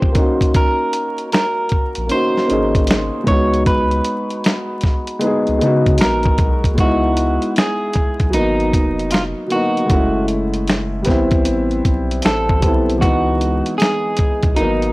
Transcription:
0.00 0.12 A#3 medium
0.00 0.14 C#4 medium
0.00 0.18 F4 medium
0.00 0.17 G4 medium
0.00 0.56 C5 loud
0.00 kick medium
0.12 1.41 A#3 medium
0.12 1.42 C#4 medium
0.12 kick loud
0.12 closed hi-hat medium
0.17 1.43 D#4 medium
0.17 1.44 F#4 medium
0.41 kick medium
0.41 closed hi-hat soft
0.54 1.32 A#4 medium
0.54 kick loud
0.54 closed hi-hat medium
0.93 closed hi-hat medium
1.18 closed hi-hat soft
1.32 2.07 A#4 medium
1.32 finger snap medium
1.32 snare loud
1.32 closed hi-hat medium
1.69 kick medium
1.69 closed hi-hat medium
1.95 2.10 A#1 medium
1.95 closed hi-hat soft
2.06 2.37 A#3 medium
2.06 2.39 C#4 medium
2.06 closed hi-hat medium
2.11 2.40 D#4 medium
2.11 2.41 F#4 medium
2.11 3.27 C5 loud
2.37 snare soft
2.45 3.23 A#3 medium
2.45 3.24 C#4 medium
2.50 3.10 G#1 medium
2.50 3.25 D#4 medium
2.50 3.27 G#4 medium
2.50 closed hi-hat medium
2.75 kick medium
2.75 closed hi-hat soft
2.87 finger snap medium
2.87 snare loud
2.87 closed hi-hat loud
3.24 4.01 C#2 loud
3.24 4.53 G#3 medium
3.24 4.54 B3 medium
3.24 kick medium
3.24 closed hi-hat medium
3.28 4.55 D#4 medium
3.28 4.56 F#4 medium
3.28 3.66 C#5 loud
3.54 closed hi-hat soft
3.66 5.96 B4 medium
3.66 kick loud
3.66 closed hi-hat medium
3.91 closed hi-hat soft
4.04 closed hi-hat medium
4.30 closed hi-hat soft
4.44 finger snap medium
4.44 snare loud
4.44 closed hi-hat medium
4.81 kick medium
4.81 closed hi-hat medium
4.85 snare soft
5.07 closed hi-hat soft
5.19 5.50 G#3 medium
5.19 5.51 B3 medium
5.19 closed hi-hat medium
5.24 5.52 D#4 medium
5.24 5.53 G#4 medium
5.47 5.61 C#2 medium
5.47 closed hi-hat soft
5.59 5.98 C#3 medium
5.59 6.35 G#3 medium
5.59 6.37 B3 medium
5.59 closed hi-hat medium
5.63 6.38 D#4 medium
5.63 6.39 F#4 medium
5.86 kick medium
5.86 closed hi-hat soft
5.98 6.37 A#1 loud
5.98 6.80 A#4 medium
5.98 finger snap medium
5.98 snare loud
5.98 closed hi-hat medium
6.23 kick loud
6.23 closed hi-hat soft
6.38 6.76 B1 medium
6.38 kick loud
6.38 closed hi-hat medium
6.64 kick medium
6.64 closed hi-hat soft
6.75 7.39 C#2 loud
6.75 7.81 G#3 medium
6.75 7.82 B3 medium
6.75 kick loud
6.75 closed hi-hat medium
6.80 7.83 D#4 medium
6.80 7.85 E4 medium
6.80 7.58 F#4 medium
7.17 closed hi-hat medium
7.42 closed hi-hat soft
7.56 8.31 G#4 medium
7.56 finger snap medium
7.56 snare loud
7.56 closed hi-hat medium
7.93 kick medium
7.93 closed hi-hat medium
8.20 8.37 B1 medium
8.20 kick medium
8.20 closed hi-hat soft
8.30 9.30 F#3 medium
8.30 9.31 A#3 medium
8.30 closed hi-hat medium
8.34 8.71 G#1 loud
8.34 9.33 B3 medium
8.34 9.14 D#4 loud
8.34 9.34 D#4 medium
8.60 closed hi-hat soft
8.73 9.34 F1 medium
8.73 kick medium
8.73 closed hi-hat medium
8.99 closed hi-hat soft
9.11 9.22 F4 medium
9.11 finger snap medium
9.11 snare loud
9.11 closed hi-hat loud
9.47 9.78 F#3 medium
9.47 9.79 A#3 medium
9.47 closed hi-hat medium
9.52 9.80 B3 medium
9.52 9.82 D#4 medium
9.52 10.25 F#4 medium
9.77 closed hi-hat soft
9.86 10.92 G#3 medium
9.86 10.93 A3 medium
9.86 kick loud
9.86 closed hi-hat medium
9.90 11.03 F#1 loud
9.90 10.95 C#4 medium
9.90 10.96 E4 medium
10.28 closed hi-hat medium
10.54 closed hi-hat soft
10.67 finger snap medium
10.67 snare loud
10.67 closed hi-hat medium
11.03 12.32 G3 medium
11.03 12.33 B3 medium
11.03 closed hi-hat medium
11.07 11.81 A1 medium
11.07 12.34 C4 medium
11.07 12.35 E4 loud
11.07 kick medium
11.07 snare soft
11.31 kick medium
11.31 closed hi-hat soft
11.45 closed hi-hat medium
11.71 closed hi-hat soft
11.85 12.22 B1 medium
11.85 kick medium
11.85 closed hi-hat medium
12.11 closed hi-hat soft
12.22 12.61 A1 medium
12.22 13.01 A4 medium
12.22 finger snap medium
12.22 snare loud
12.22 closed hi-hat medium
12.49 kick medium
12.60 13.04 B1 medium
12.60 12.90 G3 medium
12.60 12.91 B3 medium
12.60 kick loud
12.60 closed hi-hat medium
12.65 12.93 C4 medium
12.65 12.94 E4 medium
12.90 closed hi-hat soft
12.98 14.04 E3 medium
12.98 14.05 G#3 medium
12.98 13.78 F#4 medium
12.98 kick loud
13.02 13.62 C#2 loud
13.02 14.07 B3 medium
13.02 14.08 D#4 medium
13.02 closed hi-hat medium
13.41 closed hi-hat medium
13.66 closed hi-hat soft
13.78 14.59 G#4 medium
13.78 finger snap medium
13.78 snare loud
13.78 closed hi-hat medium
14.17 kick medium
14.17 closed hi-hat medium
14.43 14.57 B1 medium
14.43 kick medium
14.43 closed hi-hat soft
14.55 14.93 F#3 medium
14.55 14.93 A#3 medium
14.55 14.93 D#4 medium
14.55 closed hi-hat medium
14.59 14.93 G#1 loud
14.59 14.93 B3 medium
14.59 14.93 D#4 medium
14.82 closed hi-hat soft

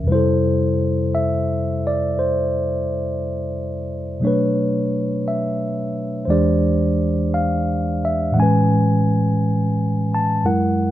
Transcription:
0.00 4.19 F2 soft
0.00 0.10 A#4 soft
0.00 0.10 E5 medium
0.06 4.20 C3 soft
0.06 4.22 G3 soft
0.06 0.10 B4 soft
0.11 4.23 E4 soft
0.11 4.25 A4 soft
0.11 1.16 C5 medium
1.15 1.85 E5 medium
1.87 2.15 D5 medium
2.19 3.87 C5 medium
4.20 6.28 B2 soft
4.20 6.29 F#3 soft
4.20 6.29 A3 soft
4.20 6.29 D4 soft
4.25 5.24 B4 medium
4.25 6.31 C#5 soft
5.28 6.22 E5 medium
6.25 8.37 E2 soft
6.25 8.33 E3 soft
6.25 8.36 G#3 soft
6.25 6.29 C5 soft
6.30 8.38 D4 soft
6.30 8.38 G4 soft
6.30 8.39 C5 soft
6.30 7.30 D5 medium
7.34 8.07 F5 medium
8.05 8.31 E5 medium
8.32 10.42 A2 soft
8.32 10.43 E3 soft
8.32 8.38 F#5 soft
8.37 10.44 G#3 soft
8.37 10.46 C#4 soft
8.37 9.39 G#5 medium
8.42 10.47 B4 medium
10.14 10.44 A5 medium
10.44 10.91 F#2 soft
10.44 10.91 F#3 soft
10.44 10.91 G#3 soft
10.44 10.91 E4 soft
10.44 10.91 A#4 soft
10.44 10.91 F#5 medium

